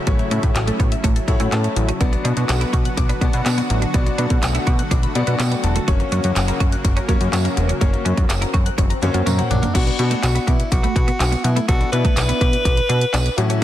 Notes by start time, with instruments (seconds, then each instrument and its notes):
Already playing: analog synth pad C#3 F#3 A3 E4
0.07 analog synth bass A1, synth arpeggio sound F#3, grand piano A3 E4 F#4 C#5, clean electric guitar B3, kick, closed hi-hat
0.19 synth arpeggio sound A3, closed hi-hat
0.31 analog synth bass A2, synth arpeggio sound C#4, clean electric guitar C#4, closed hi-hat
0.43 analog synth bass A2, muted clean electric guitar stroke, kick, closed hi-hat
0.55 analog synth bass A1, synth arpeggio sound F#4, muted clean electric guitar stroke, clap, closed hi-hat
0.67 clean electric guitar A3, synth arpeggio sound A4, closed hi-hat
0.80 analog synth bass A2, clean electric guitar B3, synth arpeggio sound C#5, kick, closed hi-hat
0.92 synth arpeggio sound E5, closed hi-hat
1.04 analog synth bass A1, clean electric guitar A3, synth arpeggio sound C#5, kick, closed hi-hat
1.16 synth arpeggio sound A4, closed hi-hat
1.28 analog synth bass A2, grand piano A3 E4 F#4 C#5 F#5, muted clean electric guitar stroke, kick, closed hi-hat
1.40 analog synth bass A2, clean electric guitar C#4, synth arpeggio sound E4, closed hi-hat
1.52 analog synth bass A2, clean electric guitar B3, synth arpeggio sound C#4, grand piano A5, clap, closed hi-hat
1.64 synth arpeggio sound A3, muted clean electric guitar stroke, closed hi-hat
1.76 analog synth bass A1, synth arpeggio sound F#3, closed hi-hat
1.89 clean electric guitar C#4, closed hi-hat
2.00 analog synth bass B1, analog synth pad D3 B3 F#4, synth arpeggio sound F#3, grand piano B3 D4 F#4 D5, clean electric guitar B3, kick, closed hi-hat
2.13 synth arpeggio sound B3, muted clean electric guitar stroke, closed hi-hat
2.25 analog synth bass B2, clean electric guitar D4, synth arpeggio sound D4, closed hi-hat
2.37 analog synth bass B2, closed hi-hat
2.49 analog synth bass B1, synth arpeggio sound F#5, muted clean electric guitar stroke, clap, closed hi-hat, tambourine
2.61 clean electric guitar E4, synth arpeggio sound B5, closed hi-hat
2.73 analog synth bass B2, clean electric guitar F#4, synth arpeggio sound D6, kick, closed hi-hat
2.85 synth arpeggio sound F#6, closed hi-hat
2.97 analog synth bass B1, synth arpeggio sound D6, muted clean electric guitar stroke, kick, closed hi-hat
3.09 clean electric guitar D4, synth arpeggio sound B5, closed hi-hat
3.21 analog synth bass B2, clean electric guitar B3, grand piano B3 D4 F#4 D5, kick, closed hi-hat
3.33 analog synth bass B2, synth arpeggio sound F#4, closed hi-hat
3.46 analog synth bass B2, synth arpeggio sound D4, clap, closed hi-hat, tambourine
3.58 clean electric guitar B3, synth arpeggio sound B3, closed hi-hat
3.70 analog synth bass A1, synth arpeggio sound F#3, muted clean electric guitar stroke, closed hi-hat
3.82 clean electric guitar D4, closed hi-hat
3.94 analog synth bass B1, synth arpeggio sound F#3, analog synth pad A3, grand piano B3 D4 F#4 D5, clean electric guitar B3, kick, closed hi-hat
4.06 synth arpeggio sound B3, closed hi-hat
4.18 analog synth bass B2, clean electric guitar D4, synth arpeggio sound D4, closed hi-hat
4.30 analog synth bass B2, muted clean electric guitar stroke, kick, closed hi-hat
4.42 analog synth bass B1, synth arpeggio sound F#5, muted clean electric guitar stroke, clap, closed hi-hat, tambourine
4.55 clean electric guitar E4, synth arpeggio sound B5, closed hi-hat
4.67 analog synth bass B2, clean electric guitar F#4, synth arpeggio sound D6, kick, closed hi-hat
4.79 synth arpeggio sound F#6, closed hi-hat
4.91 analog synth bass B1, clean electric guitar D4, synth arpeggio sound D6, kick, closed hi-hat
5.03 synth arpeggio sound B5, closed hi-hat
5.15 analog synth bass B2, grand piano B3 D4 F#4 D5 F#5, muted clean electric guitar stroke, closed hi-hat
5.27 analog synth bass B2, clean electric guitar B3, synth arpeggio sound F#4, closed hi-hat
5.39 analog synth bass B2, clean electric guitar B3, synth arpeggio sound D4, grand piano G5, clap, closed hi-hat, tambourine
5.51 synth arpeggio sound B3, muted clean electric guitar stroke, closed hi-hat
5.64 analog synth bass E1, synth arpeggio sound F#3, grand piano A5, closed hi-hat
5.76 clean electric guitar A3, closed hi-hat
5.88 analog synth bass F#1, analog synth pad C#3 F#3 A#3, synth arpeggio sound F#3, grand piano A#3 C#4 F#4 C#5, clean electric guitar F#4, kick, closed hi-hat, swell
6.00 synth arpeggio sound A#3, muted clean electric guitar stroke, closed hi-hat
6.12 analog synth bass F#2, clean electric guitar C#4, synth arpeggio sound C#4, closed hi-hat
6.24 analog synth bass F#2, closed hi-hat
6.36 analog synth bass F#1, synth arpeggio sound F#5, muted clean electric guitar stroke, clap, closed hi-hat, tambourine
6.48 clean electric guitar E4, synth arpeggio sound A#5, closed hi-hat
6.60 analog synth bass F#2, clean electric guitar F#4, synth arpeggio sound C#6, kick, closed hi-hat
6.72 synth arpeggio sound F#6, closed hi-hat
6.84 analog synth bass F#1, synth arpeggio sound C#6, muted clean electric guitar stroke, kick, closed hi-hat
6.97 clean electric guitar C#4, synth arpeggio sound A#5, closed hi-hat
7.09 analog synth bass F#2, clean electric guitar A#3, grand piano A#3 C#4 F#4 C#5, kick, closed hi-hat
7.21 analog synth bass F#2, synth arpeggio sound F#4, closed hi-hat
7.33 analog synth bass F#2, synth arpeggio sound C#4, clap, closed hi-hat, tambourine
7.45 synth arpeggio sound A#3, clean electric guitar A#3, closed hi-hat
7.57 analog synth bass E1, synth arpeggio sound F#3, muted clean electric guitar stroke, closed hi-hat
7.69 clean electric guitar C#4, closed hi-hat
7.81 analog synth bass F#1, synth arpeggio sound F#3, clean electric guitar A#3, grand piano A#3 C#4 F#4 C#5, kick, closed hi-hat
7.93 synth arpeggio sound A#3, closed hi-hat
8.05 analog synth bass F#2, clean electric guitar C#4, synth arpeggio sound C#4, closed hi-hat
8.17 analog synth bass F#2, muted clean electric guitar stroke, kick, closed hi-hat
8.30 analog synth bass F#1, synth arpeggio sound F#5, muted clean electric guitar stroke, clap, closed hi-hat, tambourine
8.42 clean electric guitar E4, synth arpeggio sound A#5, closed hi-hat
8.54 analog synth bass F#2, clean electric guitar F#4, synth arpeggio sound C#6, kick, closed hi-hat
8.66 synth arpeggio sound F#6, closed hi-hat
8.78 analog synth bass F#1, clean electric guitar C#4, synth arpeggio sound C#6, kick, closed hi-hat, high tom
8.90 synth arpeggio sound A#5, closed hi-hat
9.02 analog synth bass F#2, grand piano A#3 C#4 F#4 C#5, muted clean electric guitar stroke, closed hi-hat, mid tom
9.14 analog synth bass F#2, clean electric guitar A#3, synth arpeggio sound F#4, closed hi-hat
9.26 analog synth bass F#2, clean electric guitar A#3, synth arpeggio sound C#4, grand piano A#5, closed hi-hat, mid tom, tambourine
9.38 synth arpeggio sound A#3, grand piano F#5, muted clean electric guitar stroke, closed hi-hat, mid tom
9.51 analog synth bass A#1, synth arpeggio sound F#3, alto saxophone D4, closed hi-hat, floor tom
9.63 clean electric guitar A#3, closed hi-hat, floor tom
9.75 analog synth bass B1, synth arpeggio sound F#3, clean electric guitar B3, grand piano B3 D4 F#4, alto saxophone F#4, kick, closed hi-hat, crash
9.87 synth arpeggio sound B3, closed hi-hat
9.99 analog synth bass B2, grand piano B3 D4 F#4, synth arpeggio sound D4, muted clean electric guitar stroke, closed hi-hat
10.11 clean electric guitar A3, closed hi-hat
10.23 analog synth bass B1, alto saxophone F#4, synth arpeggio sound F#5, muted clean electric guitar stroke, clap, closed hi-hat, tambourine
10.35 clean electric guitar B3, synth arpeggio sound B5, closed hi-hat
10.47 analog synth bass B2, clean electric guitar B3, alto saxophone E4, synth arpeggio sound D6, kick, closed hi-hat
10.60 closed hi-hat
10.71 analog synth bass B1, alto saxophone F#4, synth arpeggio sound D6, kick, closed hi-hat
10.83 clean electric guitar A3, synth arpeggio sound B5, closed hi-hat
10.96 analog synth bass B2, synth arpeggio sound F#5, muted clean electric guitar stroke, kick, closed hi-hat
11.08 clean electric guitar B3, closed hi-hat
11.20 analog synth bass B1, synth arpeggio sound D4, clap, closed hi-hat, tambourine
11.32 clean electric guitar B3, closed hi-hat
11.44 analog synth bass B2, synth arpeggio sound F#3, alto saxophone E4, muted clean electric guitar stroke, closed hi-hat
11.56 clean electric guitar A3, synth arpeggio sound B3, closed hi-hat
11.68 analog synth bass B1, synth arpeggio sound F#3, grand piano B3 D4 A4, clean electric guitar B3, alto saxophone F#4, kick, closed hi-hat
11.81 synth arpeggio sound B3, closed hi-hat
11.92 analog synth bass B2, grand piano B3 D4 E4, synth arpeggio sound D4, alto saxophone B4, muted clean electric guitar stroke, closed hi-hat
12.05 clean electric guitar A3, kick, closed hi-hat
12.17 analog synth bass B1, synth arpeggio sound F#5, muted clean electric guitar stroke, clap, closed hi-hat, tambourine
12.29 clean electric guitar B3, synth arpeggio sound B5, closed hi-hat
12.41 analog synth bass B2, clean electric guitar B3, synth arpeggio sound D6, kick, closed hi-hat
12.53 closed hi-hat
12.65 analog synth bass B1, synth arpeggio sound D6, kick, closed hi-hat
12.77 synth arpeggio sound B5, closed hi-hat
12.89 analog synth bass B2, clean electric guitar D4, synth arpeggio sound F#5, closed hi-hat
13.01 closed hi-hat
13.13 analog synth bass B1, synth arpeggio sound D4, clean electric guitar D4, clap, closed hi-hat, tambourine
13.26 muted clean electric guitar stroke, closed hi-hat
13.37 analog synth bass A2, grand piano E3 F#3 A3 C#4 F#4, synth arpeggio sound F#3, alto saxophone E4, closed hi-hat
13.50 synth arpeggio sound A3, clean electric guitar C#4, closed hi-hat